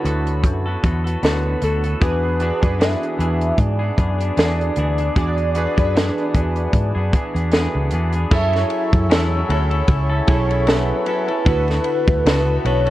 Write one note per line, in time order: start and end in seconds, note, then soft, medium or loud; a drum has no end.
0.00 0.65 D3 medium
0.00 2.04 E4 medium
0.00 2.01 F#4 medium
0.00 2.04 A4 medium
0.00 2.03 B4 medium
0.00 0.73 C#5 medium
0.05 0.44 D2 medium
0.05 0.66 B3 medium
0.05 0.66 F#4 medium
0.05 0.64 A4 medium
0.05 closed hi-hat medium
0.27 closed hi-hat soft
0.44 0.75 F#2 medium
0.44 kick medium
0.44 closed hi-hat medium
0.66 0.83 B3 soft
0.66 0.84 F#4 medium
0.66 0.83 A4 medium
0.83 1.15 E2 medium
0.83 1.05 D3 medium
0.83 1.05 B3 medium
0.83 1.05 F#4 medium
0.83 1.03 A4 medium
0.83 kick medium
0.83 closed hi-hat medium
1.04 1.22 B3 soft
1.04 1.23 F#4 soft
1.04 1.22 A4 medium
1.04 closed hi-hat medium
1.22 1.54 D2 medium
1.22 1.60 D3 medium
1.22 1.62 B3 medium
1.22 1.62 F#4 medium
1.22 1.63 A4 medium
1.22 1.65 B4 medium
1.22 snare loud
1.22 closed hi-hat medium
1.62 1.94 D2 medium
1.62 1.83 D3 medium
1.62 1.84 B3 medium
1.62 1.84 F#4 medium
1.62 2.04 A4 medium
1.62 1.82 A4 medium
1.62 closed hi-hat medium
1.84 2.01 B3 soft
1.84 2.02 F#4 soft
1.84 2.01 A4 soft
1.84 closed hi-hat soft
2.00 2.50 E2 medium
2.00 2.23 E3 medium
2.00 2.23 B3 medium
2.00 2.33 D4 medium
2.00 2.23 D4 medium
2.00 2.34 F#4 medium
2.00 2.34 G#4 medium
2.00 2.21 G#4 medium
2.00 2.82 B4 loud
2.00 2.34 B4 medium
2.00 kick loud
2.00 closed hi-hat medium
2.23 2.40 B3 soft
2.23 2.41 D4 soft
2.23 2.41 G#4 soft
2.40 2.62 E3 soft
2.40 2.63 B3 medium
2.40 2.58 D4 medium
2.40 2.62 D4 medium
2.40 2.58 F#4 medium
2.40 2.59 G#4 medium
2.40 2.60 G#4 medium
2.40 2.59 B4 medium
2.40 closed hi-hat medium
2.61 2.94 F#2 medium
2.61 2.78 B3 soft
2.61 3.88 D4 medium
2.61 2.79 D4 soft
2.61 3.88 F#4 medium
2.61 2.80 G#4 medium
2.61 3.89 G#4 medium
2.61 3.89 B4 medium
2.61 kick medium
2.61 closed hi-hat soft
2.79 3.17 E3 medium
2.79 3.18 B3 medium
2.79 3.19 D4 medium
2.79 3.20 G#4 medium
2.79 3.61 E5 loud
2.79 snare loud
2.79 closed hi-hat medium
3.03 closed hi-hat soft
3.18 3.51 E2 medium
3.18 3.80 E3 medium
3.18 3.80 B3 medium
3.18 3.80 D4 medium
3.18 3.78 G#4 medium
3.18 closed hi-hat medium
3.41 closed hi-hat soft
3.58 3.90 G#2 medium
3.58 7.53 D5 loud
3.58 kick medium
3.58 closed hi-hat medium
3.79 3.97 B3 soft
3.79 3.98 D4 soft
3.79 3.98 G#4 medium
3.97 4.30 F#2 medium
3.97 4.19 E3 medium
3.97 4.20 B3 medium
3.97 4.19 D4 medium
3.97 4.17 G#4 medium
3.97 kick medium
3.97 closed hi-hat medium
4.18 4.37 B3 soft
4.18 4.37 D4 soft
4.18 4.37 G#4 soft
4.18 closed hi-hat medium
4.37 4.69 E2 medium
4.37 4.75 E3 medium
4.37 4.76 B3 medium
4.37 4.78 D4 medium
4.37 4.78 G#4 medium
4.37 snare loud
4.37 closed hi-hat medium
4.61 closed hi-hat soft
4.76 5.08 D2 medium
4.76 4.98 E3 medium
4.76 4.99 B3 medium
4.76 4.98 D4 medium
4.76 4.97 G#4 medium
4.76 closed hi-hat medium
4.98 5.16 B3 soft
4.98 5.16 D4 soft
4.98 5.16 G#4 medium
4.98 closed hi-hat soft
5.16 5.65 E2 medium
5.16 5.38 E3 medium
5.16 5.38 B3 medium
5.16 5.49 D4 medium
5.16 5.37 D4 medium
5.16 5.49 F#4 medium
5.16 5.49 G#4 medium
5.16 5.35 G#4 loud
5.16 5.50 D5 medium
5.16 kick loud
5.16 closed hi-hat medium
5.37 5.55 B3 soft
5.37 5.55 D4 medium
5.37 5.55 G#4 medium
5.37 closed hi-hat soft
5.55 5.77 E3 medium
5.55 5.78 B3 medium
5.55 5.73 D4 medium
5.55 5.77 D4 medium
5.55 5.73 F#4 medium
5.55 5.74 G#4 medium
5.55 5.76 G#4 medium
5.55 5.74 B4 medium
5.55 closed hi-hat medium
5.76 6.09 F#2 medium
5.76 5.94 B3 soft
5.76 7.03 D4 medium
5.76 5.95 D4 medium
5.76 7.03 F#4 medium
5.76 5.95 G#4 medium
5.76 7.03 G#4 medium
5.76 7.04 B4 medium
5.76 kick medium
5.76 closed hi-hat soft
5.95 6.32 E3 medium
5.95 6.34 B3 medium
5.95 6.35 D4 medium
5.95 6.35 G#4 medium
5.95 snare loud
5.95 closed hi-hat medium
6.18 closed hi-hat soft
6.33 6.66 E2 medium
6.33 6.95 E3 medium
6.33 6.96 B3 medium
6.33 6.95 D4 medium
6.33 6.94 G#4 medium
6.33 kick medium
6.33 closed hi-hat medium
6.56 closed hi-hat soft
6.73 6.91 G#2 medium
6.73 kick medium
6.73 closed hi-hat medium
6.95 7.10 F#2 medium
6.95 7.12 B3 soft
6.95 7.14 D4 medium
6.95 7.13 G#4 medium
7.12 7.35 E3 medium
7.12 7.35 B3 medium
7.12 7.35 D4 medium
7.12 7.33 G#4 medium
7.12 kick medium
7.12 closed hi-hat medium
7.34 7.66 E2 medium
7.34 7.51 B3 soft
7.34 7.52 D4 medium
7.34 7.52 G#4 medium
7.34 closed hi-hat soft
7.51 7.90 E3 medium
7.51 7.91 B3 medium
7.51 7.92 D4 medium
7.51 7.93 G#4 medium
7.51 snare medium
7.51 closed hi-hat medium
7.75 7.89 C#2 medium
7.91 8.24 E2 medium
7.91 8.13 E3 medium
7.91 8.14 B3 medium
7.91 8.13 D4 medium
7.91 8.12 G#4 medium
7.91 closed hi-hat medium
8.12 8.32 B3 soft
8.12 8.32 D4 soft
8.12 8.31 G#4 soft
8.12 closed hi-hat soft
8.30 8.63 F#2 loud
8.30 9.09 F#3 medium
8.30 9.09 C#4 medium
8.30 9.58 E4 medium
8.30 9.10 E4 medium
8.30 9.59 G#4 medium
8.30 9.59 A4 medium
8.30 9.11 A4 medium
8.30 11.44 C#5 medium
8.30 9.59 C#5 medium
8.30 12.90 E5 medium
8.30 9.07 E5 loud
8.30 12.90 F#5 medium
8.30 11.43 E6 medium
8.30 kick loud
8.30 crash medium
8.53 snare soft
8.53 ride soft
8.70 ride medium
8.93 9.10 F#2 loud
8.93 kick medium
8.93 ride soft
9.09 9.42 E2 medium
9.09 9.48 F#3 medium
9.09 9.48 C#4 medium
9.09 9.50 E4 medium
9.09 9.50 A4 medium
9.09 snare loud
9.09 ride medium
9.49 9.81 D2 loud
9.49 9.71 F#3 medium
9.49 9.71 C#4 medium
9.49 9.71 E4 medium
9.49 9.69 A4 medium
9.49 ride medium
9.53 9.67 C#5 medium
9.71 10.12 C#4 soft
9.71 10.10 E4 soft
9.71 10.08 A4 soft
9.71 ride soft
9.88 10.20 C#2 medium
9.88 kick medium
9.88 ride medium
9.93 10.72 C#5 medium
10.10 10.28 C#4 soft
10.10 10.29 E4 soft
10.10 10.28 A4 medium
10.27 10.91 B1 medium
10.27 10.50 F#3 medium
10.27 10.50 C#4 medium
10.27 11.24 E4 medium
10.27 10.49 E4 medium
10.27 11.25 G#4 medium
10.27 11.25 A4 medium
10.27 10.48 A4 medium
10.27 11.25 C#5 medium
10.27 kick medium
10.27 ride medium
10.49 10.67 C#4 soft
10.49 10.67 E4 medium
10.49 10.67 A4 medium
10.49 ride soft
10.67 11.05 F#3 medium
10.67 11.06 C#4 medium
10.67 11.07 E4 medium
10.67 11.08 A4 medium
10.67 snare loud
10.67 ride medium
10.71 11.48 B4 loud
11.06 11.28 F#3 medium
11.06 11.29 C#4 medium
11.06 11.28 E4 medium
11.06 11.27 A4 medium
11.06 ride medium
11.28 11.46 C#4 soft
11.28 11.47 E4 soft
11.28 11.46 A4 medium
11.28 ride soft
11.45 11.78 D2 loud
11.45 12.64 D3 medium
11.45 12.26 B3 medium
11.45 12.73 E4 medium
11.45 12.73 F#4 medium
11.45 12.25 F#4 medium
11.45 12.74 A4 medium
11.45 12.26 A4 medium
11.45 12.90 B4 medium
11.45 12.74 B4 medium
11.45 12.67 B4 loud
11.45 kick loud
11.45 ride medium
11.68 snare soft
11.68 ride soft
11.84 ride medium
12.08 12.22 D2 medium
12.08 kick medium
12.08 ride soft
12.25 12.57 C#2 medium
12.25 12.64 B3 medium
12.25 12.65 F#4 medium
12.25 12.65 A4 medium
12.25 snare loud
12.25 ride medium
12.64 12.90 B1 medium
12.64 12.86 D3 medium
12.64 12.86 B3 medium
12.64 12.86 F#4 medium
12.64 12.84 A4 medium
12.64 12.90 C#5 loud
12.64 ride medium
12.86 12.90 A4 medium
12.86 ride soft